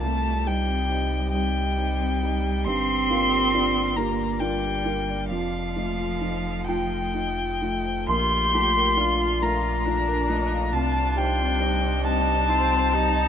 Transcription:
0.01 upright piano C2, sub bass C2, ambient pad G3 G4 D#5, cello A3, marimba C4, violin A5
0.46 upright piano G3 D#4, cello G3, marimba C5, violin G5
0.68 marimba C4
0.89 upright piano C4 D#4, marimba G4
1.11 marimba D#4
1.33 upright piano G3 D#4, cello G3, marimba C4, violin G5
1.78 upright piano C4 D#4, marimba D#4
2.00 marimba C4
2.22 upright piano G3 D#4, marimba D#4
2.44 marimba G4
2.66 sub bass G1, upright piano G2, ambient pad A#3 F4 D5, cello C4, marimba G4, violin C6
3.10 upright piano A#3 F4, marimba F5
3.32 marimba G4
3.53 upright piano D4 F4, marimba D5
3.75 marimba A#4
3.96 cello A#3, upright piano A#3 F4, marimba G4, violin A#5
4.40 cello G3, upright piano D4 F4, marimba A#4, violin G5
4.64 marimba G4
4.85 upright piano A#3 F4, marimba A#4
5.09 marimba D5
5.30 sub bass F1, upright piano F2, cello F3, ambient pad A3 D#5, marimba F4, violin F5
5.76 upright piano A3 F4, marimba D#5
5.99 marimba F4
6.22 upright piano D#4 F4, marimba C5
6.46 marimba A4
6.68 upright piano A3 F4 G5, marimba F4, violin G5
7.14 upright piano D#4 F4, marimba A4
7.37 marimba F4
7.61 upright piano A3 F4, marimba A4
7.85 marimba C5
8.08 sub bass A#1, upright piano A#1 C6, ambient pad A3 F4 D5, cello F4, viola G4, marimba A#4, violin C6
8.53 upright piano A3 F4, cello G4, marimba A5
8.76 marimba A#4
8.97 upright piano D4 F4, cello F4, viola F4, marimba F5
9.20 marimba D5
9.41 upright piano A3 F4 A#5, marimba A#4, violin A#5
9.85 cello D4, viola D4, upright piano D4 F4, marimba D5
10.07 marimba A#4
10.29 upright piano A3 F4, cello D#4, marimba D5
10.52 marimba F5
10.72 upright piano C2 A5, sub bass C2, ambient pad G3 G4 C5, marimba C4, viola D4, cello F4, violin A5
11.16 upright piano G3 D#4 G5, marimba C5, violin G5
11.40 marimba C4
11.60 upright piano C4 D#4, cello D#4, marimba G4
11.83 marimba D#4
12.04 upright piano G3 D#4 A5, marimba C4, violin A5
12.48 upright piano C4 D#4, viola C4, marimba D#4, cello F4
12.71 marimba C4
12.93 upright piano G3 D#4, viola D#4, marimba D#4, cello D#4
13.16 marimba G4

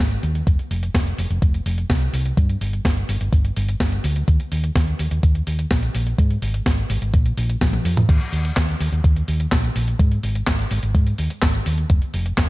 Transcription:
0.00 fingered electric bass G#1
0.11 closed hi-hat
0.23 fingered electric bass D#2, closed hi-hat
0.35 closed hi-hat
0.47 fingered electric bass F1, kick, closed hi-hat
0.59 closed hi-hat
0.71 fingered electric bass F1, open hi-hat
0.83 closed hi-hat
0.95 fingered electric bass F1, kick, snare, closed hi-hat
1.07 closed hi-hat
1.18 fingered electric bass F1, open hi-hat
1.30 fingered electric bass F1, closed hi-hat
1.42 fingered electric bass F1, kick, closed hi-hat
1.54 closed hi-hat
1.66 fingered electric bass F1, open hi-hat
1.78 closed hi-hat
1.90 fingered electric bass C2, kick, snare, closed hi-hat
2.02 closed hi-hat
2.13 fingered electric bass C2, open hi-hat
2.26 closed hi-hat
2.37 fingered electric bass G2, kick, closed hi-hat
2.49 closed hi-hat
2.61 fingered electric bass G1, open hi-hat
2.73 closed hi-hat
2.85 fingered electric bass G1, kick, snare, closed hi-hat
2.97 closed hi-hat
3.09 fingered electric bass G1, open hi-hat
3.21 fingered electric bass G1, closed hi-hat
3.33 fingered electric bass G1, kick, closed hi-hat
3.45 closed hi-hat
3.57 fingered electric bass G1, open hi-hat
3.69 closed hi-hat
3.80 fingered electric bass G1, kick, snare, closed hi-hat
3.92 closed hi-hat
4.04 fingered electric bass D2, open hi-hat
4.16 closed hi-hat
4.28 fingered electric bass D#2, kick, closed hi-hat
4.40 closed hi-hat
4.52 fingered electric bass D#2, open hi-hat
4.64 closed hi-hat
4.75 fingered electric bass D#2, kick, snare, closed hi-hat
4.87 closed hi-hat
4.99 fingered electric bass D#2, open hi-hat
5.11 fingered electric bass D#2, closed hi-hat
5.23 fingered electric bass D#2, kick, closed hi-hat
5.35 closed hi-hat
5.47 fingered electric bass D#2, open hi-hat
5.59 closed hi-hat
5.71 fingered electric bass A#1, kick, snare, closed hi-hat
5.83 closed hi-hat
5.95 fingered electric bass A#1, open hi-hat
6.07 closed hi-hat
6.18 fingered electric bass G#2, kick, closed hi-hat
6.31 closed hi-hat
6.42 fingered electric bass G#1, open hi-hat
6.54 closed hi-hat
6.66 fingered electric bass G#1, kick, snare, closed hi-hat
6.78 closed hi-hat
6.90 fingered electric bass G#1, open hi-hat
7.02 fingered electric bass G#1, closed hi-hat
7.14 fingered electric bass A#1, kick, closed hi-hat
7.26 closed hi-hat
7.37 fingered electric bass A#1, open hi-hat
7.50 closed hi-hat
7.61 fingered electric bass A#1, kick, snare, closed hi-hat, high tom
7.73 closed hi-hat, high tom
7.85 fingered electric bass F2, open hi-hat
7.97 closed hi-hat, mid tom
8.09 fingered electric bass D#2, kick, closed hi-hat, crash
8.21 closed hi-hat
8.33 fingered electric bass D#2, open hi-hat
8.45 closed hi-hat
8.57 fingered electric bass D#2, kick, snare, clap, closed hi-hat
8.69 closed hi-hat
8.80 fingered electric bass D#2, open hi-hat
8.92 fingered electric bass D#2, closed hi-hat
9.04 fingered electric bass D#2, kick, closed hi-hat
9.16 closed hi-hat
9.28 fingered electric bass D#2, open hi-hat
9.40 closed hi-hat
9.52 fingered electric bass A#1, kick, snare, clap, closed hi-hat
9.64 closed hi-hat
9.76 fingered electric bass A#1, open hi-hat
9.88 closed hi-hat
9.99 fingered electric bass G#2, kick, closed hi-hat
10.12 closed hi-hat
10.23 fingered electric bass G#1, open hi-hat
10.35 closed hi-hat
10.47 fingered electric bass G#1, kick, snare, clap, closed hi-hat
10.59 closed hi-hat
10.71 fingered electric bass G#1, open hi-hat
10.83 fingered electric bass G#1, closed hi-hat
10.95 fingered electric bass G#2, kick, closed hi-hat
11.07 closed hi-hat
11.18 fingered electric bass D#2, open hi-hat
11.30 closed hi-hat
11.42 fingered electric bass G#1, kick, snare, clap, closed hi-hat
11.54 closed hi-hat
11.66 fingered electric bass D#2, open hi-hat
11.78 closed hi-hat
11.90 fingered electric bass F1, kick, closed hi-hat
12.02 closed hi-hat
12.14 fingered electric bass F1, open hi-hat
12.26 closed hi-hat
12.37 fingered electric bass F1, kick, snare, clap, closed hi-hat

